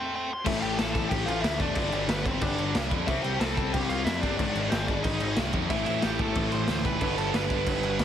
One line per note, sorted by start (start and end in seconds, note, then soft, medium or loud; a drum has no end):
0.00 0.31 A3 medium
0.00 0.13 G5 medium
0.00 0.14 C6 medium
0.15 0.30 G5 medium
0.15 0.31 C6 medium
0.33 0.47 C6 loud
0.45 0.61 A1 loud
0.45 1.59 A2 medium
0.45 1.60 E3 loud
0.45 1.58 A3 loud
0.45 0.58 E4 medium
0.45 0.58 E5 loud
0.45 kick loud
0.45 crash loud
0.45 crash medium
0.59 0.78 A1 medium
0.59 0.63 F5 medium
0.59 0.78 G5 loud
0.59 crash medium
0.64 0.79 G4 medium
0.79 1.10 A1 medium
0.79 0.93 A4 medium
0.79 0.91 A5 loud
0.79 snare loud
0.79 crash medium
0.92 1.10 A4 medium
0.92 1.09 A5 loud
0.92 kick loud
0.92 crash medium
1.09 1.27 A1 medium
1.09 1.27 G4 medium
1.09 1.26 G5 medium
1.09 kick loud
1.09 crash medium
1.26 1.43 A1 loud
1.26 1.43 F4 medium
1.26 1.41 F5 loud
1.26 crash medium
1.41 1.59 D2 loud
1.41 1.59 E4 medium
1.41 1.60 E5 medium
1.41 snare loud
1.41 crash medium
1.59 1.75 F1 loud
1.59 1.76 E3 medium
1.59 1.75 A3 medium
1.59 1.76 D4 medium
1.59 1.73 D5 medium
1.59 kick medium
1.59 crash medium
1.63 1.77 A2 medium
1.75 1.92 G1 loud
1.75 2.90 G2 medium
1.75 2.91 D3 loud
1.75 2.08 D4 medium
1.75 2.08 D5 loud
1.75 kick loud
1.75 crash medium
1.79 2.89 G3 loud
1.92 2.07 G1 medium
1.92 crash medium
2.08 2.39 G1 medium
2.08 2.25 B3 medium
2.08 2.26 B4 medium
2.08 snare loud
2.08 crash medium
2.26 2.42 C4 medium
2.26 2.42 C5 medium
2.26 kick medium
2.26 crash medium
2.41 2.57 G1 loud
2.41 2.73 D4 medium
2.41 2.75 D5 medium
2.41 kick loud
2.41 crash medium
2.58 2.74 G1 loud
2.58 crash medium
2.74 2.90 C2 medium
2.74 snare loud
2.74 crash medium
2.91 3.07 F2 medium
2.91 3.08 G2 medium
2.91 3.07 D3 medium
2.91 3.06 G3 medium
2.91 kick medium
2.91 crash medium
3.07 3.23 C2 loud
3.07 4.21 C3 medium
3.07 4.22 G3 loud
3.07 4.22 C4 loud
3.07 3.23 E4 medium
3.07 3.22 E5 loud
3.07 kick loud
3.07 crash medium
3.23 3.39 C2 loud
3.23 3.39 G4 medium
3.23 3.39 G5 loud
3.23 crash medium
3.39 3.71 C2 medium
3.39 3.56 A4 medium
3.39 3.56 A5 loud
3.39 snare loud
3.39 crash medium
3.57 3.73 A4 medium
3.57 3.72 A5 loud
3.57 kick medium
3.57 crash medium
3.72 3.88 C2 medium
3.72 3.90 G4 medium
3.72 3.90 G5 loud
3.72 kick loud
3.72 crash medium
3.89 4.04 C2 loud
3.89 4.06 F4 medium
3.89 4.05 F5 loud
3.89 crash medium
4.05 4.21 F2 loud
4.05 4.22 E4 medium
4.05 4.20 E5 medium
4.05 snare loud
4.05 crash medium
4.20 4.38 G1 medium
4.20 4.39 G3 medium
4.20 5.72 C4 medium
4.20 4.38 D4 medium
4.20 4.36 D5 loud
4.20 kick medium
4.20 crash medium
4.25 4.39 C3 medium
4.37 4.54 G#1 loud
4.37 5.53 G#2 loud
4.37 5.53 D#3 loud
4.37 4.70 D4 medium
4.37 4.69 D5 loud
4.37 kick loud
4.37 crash medium
4.42 5.51 G#3 loud
4.55 4.71 G#1 medium
4.55 crash medium
4.70 5.02 G#1 medium
4.70 4.88 C4 medium
4.70 4.88 C5 medium
4.70 snare loud
4.70 crash medium
4.87 5.04 D4 medium
4.87 5.03 D5 medium
4.87 kick medium
4.87 crash medium
5.03 5.20 G#1 loud
5.03 5.35 D#4 medium
5.03 5.37 D#5 medium
5.03 kick loud
5.03 crash medium
5.20 5.36 G#1 medium
5.20 crash medium
5.36 5.53 C2 medium
5.36 snare loud
5.36 crash medium
5.52 5.69 F2 medium
5.52 5.70 G#2 medium
5.52 5.68 D#3 medium
5.52 5.68 G#3 medium
5.52 kick medium
5.52 crash medium
5.69 5.85 A1 loud
5.69 6.83 A2 loud
5.69 6.84 E3 loud
5.69 6.83 A3 loud
5.69 7.01 C4 loud
5.69 5.86 E4 medium
5.69 7.01 E4 loud
5.69 5.85 E5 loud
5.69 kick loud
5.69 crash medium
5.86 6.02 A1 medium
5.86 6.02 E4 medium
5.86 6.03 E5 medium
5.86 crash medium
6.02 6.33 A1 medium
6.02 6.19 G4 medium
6.02 6.20 G5 loud
6.02 snare loud
6.02 crash medium
6.19 6.50 A4 medium
6.19 6.52 A5 medium
6.19 kick medium
6.19 crash medium
6.35 6.51 A1 medium
6.35 kick loud
6.35 crash medium
6.52 6.68 A1 loud
6.52 6.83 C5 medium
6.52 6.85 C6 loud
6.52 crash medium
6.68 6.84 D2 loud
6.68 snare loud
6.68 crash medium
6.84 7.00 F1 loud
6.84 7.02 A2 medium
6.84 7.01 E3 medium
6.84 7.00 A3 medium
6.84 7.16 B4 medium
6.84 7.16 B5 loud
6.84 kick medium
6.84 crash medium
7.00 7.16 G1 loud
7.00 8.05 G2 medium
7.00 8.05 D3 loud
7.00 8.05 G3 loud
7.00 8.05 B3 loud
7.00 8.05 D4 loud
7.00 kick loud
7.00 crash loud
7.17 7.33 G1 medium
7.17 7.33 A4 medium
7.17 7.35 A5 medium
7.17 crash medium
7.34 7.64 G1 medium
7.34 8.05 B4 medium
7.34 8.05 B5 loud
7.34 snare loud
7.34 crash loud
7.50 kick medium
7.50 crash medium
7.67 7.82 G1 medium
7.67 kick loud
7.67 crash loud
7.82 7.98 G1 medium
7.82 crash medium
7.99 8.05 C2 loud
7.99 snare loud
7.99 crash medium